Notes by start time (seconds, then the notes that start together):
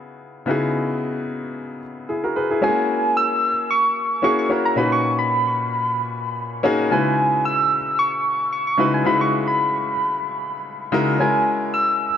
Already playing: C#3 B3 D#4 E4 F#4 G#4
0.46 C#3 B3 D#4 E4 F#4
0.51 G#4
2.09 E4 G#4
2.24 F#4 A#4
2.36 G#4 B4
2.51 E4 G#4
2.61 G#3 C#4 E4 F#4 G#4 G#5
2.68 A#3
3.17 E6
3.71 C#6
4.22 A#3 C#4 E4 F#4 G#4 C#6
4.39 C#6
4.49 A#3 C#4 E4 F#4 A#4
4.65 A#5
4.76 A#2 C#4 D#4 F#4 B4 B5
4.92 C#6
5.19 B5
6.63 A#3 C#4 D#4 F#4 G#4
6.90 C#3 G#3 D#4 E4 F#4 B4 G#5
7.45 E6
7.99 C#6
8.53 C#6
8.67 C#6
8.77 C#3 G#3 D#4 E4 F#4 B4
8.94 G#5
9.04 C#3 G#3 D#4 E4 F#4 B4 B5
9.21 C#6
9.48 B5
10.92 C#3 G#3 D#4 E4 F#4 A#4
11.19 G#3 C#4 E4 F#4 A#4 G#5
11.74 E6